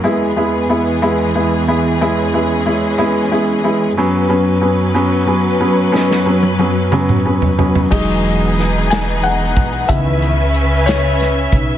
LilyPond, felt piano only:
\new Staff \with { instrumentName = "Felt piano" } { \time 6/8 \key e \lydian \tempo 4. = 61 << { <gis b e'>8 <gis b e'>8 <gis b e'>8 <gis b e'>8 <gis b e'>8 <gis b e'>8 | <gis b e'>8 <gis b e'>8 <gis b e'>8 <gis b e'>8 <gis b e'>8 <gis b e'>8 | <fis b cis'>8 <fis b cis'>8 <fis b cis'>8 <fis b cis'>8 <fis b cis'>8 <fis b cis'>8 | <fis b cis'>8 <fis b cis'>8 <fis b cis'>8 <fis b cis'>8 <fis b cis'>8 <fis b cis'>8 |
dis''4. gis''8 fis''4 | e''4. cis''4 r8 | } \\ { r2. | r2. | r2. | r2. |
<fis gis dis'>2. | <dis e b>8 r2 r8 | } >> }